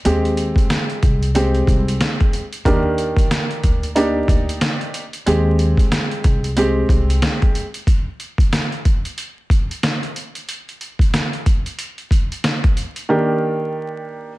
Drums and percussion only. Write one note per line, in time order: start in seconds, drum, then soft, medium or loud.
0.05 closed hi-hat medium
0.25 closed hi-hat soft
0.37 closed hi-hat medium
0.56 kick medium
0.56 closed hi-hat medium
0.70 snare loud
0.70 closed hi-hat medium
0.90 closed hi-hat soft
1.03 kick medium
1.03 closed hi-hat medium
1.23 closed hi-hat medium
1.35 closed hi-hat medium
1.55 closed hi-hat soft
1.67 kick medium
1.67 closed hi-hat medium
1.88 closed hi-hat medium
2.01 snare loud
2.01 closed hi-hat medium
2.20 kick medium
2.20 closed hi-hat soft
2.33 closed hi-hat medium
2.53 closed hi-hat medium
2.65 kick loud
2.65 closed hi-hat medium
2.98 closed hi-hat medium
3.17 kick medium
3.17 closed hi-hat medium
3.31 snare loud
3.31 closed hi-hat medium
3.51 closed hi-hat soft
3.63 kick medium
3.63 closed hi-hat medium
3.83 closed hi-hat medium
3.96 closed hi-hat medium
4.28 kick medium
4.28 closed hi-hat medium
4.49 closed hi-hat medium
4.61 snare loud
4.61 closed hi-hat medium
4.81 closed hi-hat soft
4.94 closed hi-hat medium
5.13 closed hi-hat medium
5.27 closed hi-hat medium
5.59 closed hi-hat medium
5.77 kick medium
5.77 closed hi-hat medium
5.92 snare loud
5.92 closed hi-hat medium
6.11 closed hi-hat soft
6.24 kick medium
6.24 closed hi-hat medium
6.44 closed hi-hat medium
6.57 closed hi-hat medium
6.89 kick medium
6.89 closed hi-hat medium
7.10 closed hi-hat medium
7.22 snare loud
7.22 closed hi-hat medium
7.42 kick medium
7.42 closed hi-hat soft
7.55 closed hi-hat medium
7.74 closed hi-hat medium
7.87 kick loud
7.87 closed hi-hat medium
8.20 closed hi-hat medium
8.38 kick medium
8.38 closed hi-hat medium
8.53 snare loud
8.53 closed hi-hat medium
8.72 closed hi-hat soft
8.85 kick medium
8.85 closed hi-hat medium
9.05 closed hi-hat medium
9.18 closed hi-hat medium
9.50 kick medium
9.50 closed hi-hat medium
9.71 closed hi-hat medium
9.83 snare loud
9.83 closed hi-hat medium
10.03 closed hi-hat soft
10.16 closed hi-hat medium
10.35 closed hi-hat medium
10.49 closed hi-hat medium
10.69 closed hi-hat soft
10.81 closed hi-hat medium
10.99 kick medium
10.99 closed hi-hat medium
11.14 snare loud
11.14 closed hi-hat medium
11.33 closed hi-hat soft
11.46 kick medium
11.46 closed hi-hat medium
11.66 closed hi-hat medium
11.79 closed hi-hat medium
11.98 closed hi-hat soft
12.11 kick medium
12.11 closed hi-hat medium
12.32 closed hi-hat medium
12.44 snare loud
12.44 closed hi-hat medium
12.64 kick medium
12.64 closed hi-hat soft
12.77 closed hi-hat medium
12.96 closed hi-hat medium